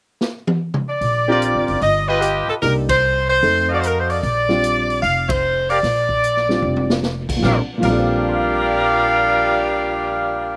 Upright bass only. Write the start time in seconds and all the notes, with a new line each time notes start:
1.01 A#1
1.55 G1
1.68 F#1
1.81 G1
2.48 muted upright bass stroke
2.63 C2
3.43 F2
4.23 A#1
5.03 F1
5.83 A#1
6.62 F1
7.43 A#1
7.82 A#1